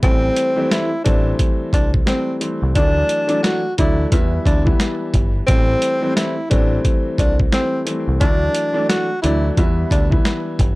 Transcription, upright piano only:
0.02 0.52 E3 medium
0.02 0.52 G3 medium
0.02 0.53 A3 medium
0.02 0.53 C4 loud
0.56 0.87 E3 loud
0.56 0.88 G3 medium
0.56 0.88 A3 medium
0.56 0.88 C4 loud
1.04 2.00 E3 loud
1.04 2.00 G3 medium
1.04 2.01 A3 medium
1.04 2.01 C4 loud
2.05 2.38 E3 medium
2.05 2.38 G3 medium
2.05 2.39 A3 medium
2.05 2.39 C4 medium
2.40 2.73 E3 medium
2.40 2.73 G3 medium
2.40 2.73 A3 medium
2.40 2.73 C4 medium
2.76 3.25 E3 medium
2.76 3.25 F#3 medium
2.76 3.26 A3 medium
2.76 3.26 D4 loud
3.27 3.59 E3 medium
3.27 3.60 F#3 medium
3.27 3.60 A3 medium
3.27 3.60 D4 loud
3.77 4.10 E3 medium
3.77 4.12 F#3 medium
3.77 4.12 A3 medium
3.77 4.12 D4 loud
4.12 4.61 E3 medium
4.12 4.61 G3 medium
4.12 4.62 B3 medium
4.12 4.62 E4 loud
4.64 5.42 E3 medium
4.64 5.42 G3 medium
4.64 5.42 B3 medium
4.64 5.43 E4 loud
5.48 5.97 E3 medium
5.48 5.98 G3 medium
5.48 5.98 A3 medium
5.48 5.98 C4 loud
6.01 6.33 E3 medium
6.01 6.33 G3 medium
6.01 6.33 A3 medium
6.01 6.34 C4 loud
6.50 7.46 E3 loud
6.50 7.46 G3 medium
6.50 7.46 A3 medium
6.50 7.46 C4 loud
7.51 7.84 E3 medium
7.51 7.84 G3 medium
7.51 7.84 A3 medium
7.51 7.84 C4 medium
7.85 8.18 E3 medium
7.85 8.18 G3 medium
7.85 8.19 A3 medium
7.85 8.19 C4 medium
8.22 8.71 E3 loud
8.22 8.71 F#3 medium
8.22 8.71 A3 medium
8.22 8.71 D4 medium
8.73 9.05 E3 loud
8.73 9.05 F#3 medium
8.73 9.05 A3 medium
8.73 9.06 D4 loud
9.23 9.55 E3 loud
9.23 9.57 F#3 medium
9.23 9.58 A3 medium
9.23 9.58 D4 loud
9.57 10.07 E3 loud
9.57 10.07 G3 medium
9.57 10.07 B3 medium
9.57 10.07 E4 loud
10.10 10.75 E3 medium
10.10 10.75 G3 medium
10.10 10.75 B3 medium
10.10 10.75 E4 loud

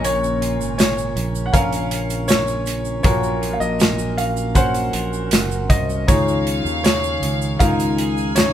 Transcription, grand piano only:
0.05 0.77 C#5 loud
0.78 1.48 C#5 medium
1.46 1.53 F#5 medium
1.54 2.31 F5 loud
2.28 3.02 C#5 loud
3.03 3.55 C#5 loud
3.53 3.61 F5 medium
3.60 4.19 D#5 loud
4.18 4.53 F5 loud
4.55 5.73 F#5 loud
5.70 6.09 D#5 medium
6.08 6.82 C#5 medium
6.84 7.62 C#5 medium
7.59 8.38 F5 loud
8.35 8.53 C#5 loud

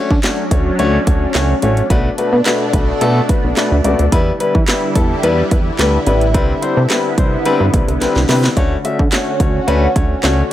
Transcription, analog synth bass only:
0.11 0.20 D3 loud
0.51 0.71 D2 loud
0.79 0.98 D2 loud
1.07 1.26 D2 loud
1.35 1.54 C#2 medium
1.62 1.82 A1 medium
1.90 2.09 B1 loud
2.33 2.42 B2 loud
2.73 2.93 B1 medium
3.01 3.21 B2 loud
3.44 3.53 B1 medium
3.72 3.81 D2 loud
3.85 3.95 C#2 loud
3.99 4.08 D2 medium
4.12 4.32 E2 loud
4.55 4.64 E3 loud
4.95 5.15 E2 loud
5.23 5.43 E2 loud
5.51 5.71 E2 medium
5.79 5.98 D2 medium
6.07 6.36 A1 loud
6.34 6.54 C2 loud
6.77 6.86 C3 loud
7.18 7.37 C2 medium
7.60 7.69 G2 medium
7.74 7.84 B1 medium
7.88 7.97 C2 loud
8.01 8.07 C2 soft
8.16 8.25 C2 medium
8.29 8.48 C3 loud
8.57 8.76 D2 loud
8.99 9.08 D3 loud
9.40 9.59 D2 loud
9.68 9.87 D2 loud
9.96 10.15 D2 loud
10.23 10.43 C#2 loud

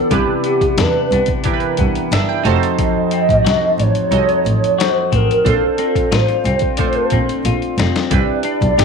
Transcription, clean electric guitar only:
0.00 0.11 C3 medium
0.00 1.45 E3 medium
0.00 0.45 B3 medium
0.00 0.78 D4 medium
0.12 2.52 C3 medium
0.46 1.12 B3 medium
0.79 2.11 D4 medium
1.13 1.78 B3 medium
1.46 2.52 E3 medium
1.79 2.52 B3 medium
2.13 2.52 D4 medium
2.46 2.78 F2 medium
2.79 5.46 F2 medium
3.12 4.82 C4 medium
3.45 4.77 F#4 medium
4.79 5.52 F#4 medium
5.12 5.79 C4 medium
5.79 6.45 C4 medium
6.12 7.44 F4 medium
6.45 7.12 C4 medium
6.79 8.19 A3 medium
7.12 7.78 C4 medium
7.46 8.19 F4 medium
7.79 8.44 C4 medium
8.45 8.85 D4 medium
8.78 8.85 G4 medium

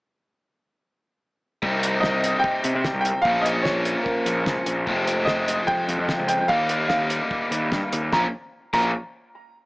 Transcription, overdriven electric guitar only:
1.62 3.24 C3 medium
1.62 3.24 G3 medium
1.62 3.25 C4 medium
1.62 3.25 D#4 medium
3.25 4.86 A#2 medium
3.25 4.88 F3 medium
3.25 4.87 A#3 loud
3.25 4.87 C#4 medium
4.87 6.48 F2 medium
4.87 6.49 C3 medium
4.87 6.50 F3 medium
4.87 6.49 G#3 medium
4.87 6.50 C4 medium
6.49 8.11 D#3 medium
6.49 8.12 G3 medium
6.49 8.12 A#3 medium
6.49 8.13 D#4 medium
8.13 8.25 A#2 medium
8.13 8.25 F3 medium
8.13 8.25 A#3 medium
8.13 8.25 C#4 medium
8.73 8.90 A#2 medium
8.73 8.90 F3 medium
8.73 8.90 A#3 medium
8.73 8.90 C#4 medium

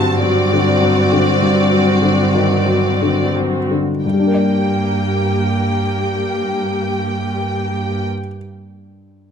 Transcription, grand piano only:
0.00 1.37 G2 soft
0.00 0.53 D3 soft
0.00 0.12 F#3 soft
0.00 0.23 G3 soft
0.23 0.69 F#3 soft
0.53 0.99 D3 soft
0.81 1.29 F#3 soft
1.12 1.60 D3 soft
1.42 4.00 G2 soft
1.72 2.21 F#3 soft
2.02 2.53 D3 soft
2.35 2.66 D#3 soft
2.66 3.21 F#3 soft
3.02 3.58 D3 soft
3.35 3.91 F#3 soft
3.71 4.04 D3 soft
4.06 8.07 G2 soft
4.13 8.14 G3 soft
4.19 8.20 D4 soft
4.27 8.28 A#4 soft
4.34 8.35 D5 soft

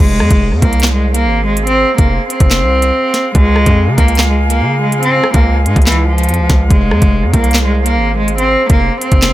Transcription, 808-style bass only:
0.00 0.22 F1 loud
0.20 0.30 F2 loud
0.31 0.53 F1 loud
0.52 0.62 F2 loud
0.62 1.27 C2 loud
1.25 1.85 G#1 loud
1.99 2.19 F1 loud
2.41 2.63 F1 loud
2.62 2.91 C2 loud
3.35 3.65 C#2 loud
3.66 3.89 F2 loud
3.87 3.97 C#3 loud
3.98 4.62 C#2 loud
4.61 5.21 C#3 loud
5.34 5.67 C#2 loud
5.66 5.76 G#2 loud
5.76 6.30 C#2 loud
6.29 6.41 F2 loud
6.39 6.49 C#2 loud
6.50 6.70 C#2 loud
6.71 6.93 F1 loud
6.92 7.02 F2 loud
7.02 7.25 F1 loud
7.23 7.33 F2 loud
7.34 7.98 C2 loud
7.96 8.56 G#1 loud
8.70 8.90 F1 loud
9.12 9.33 F1 loud

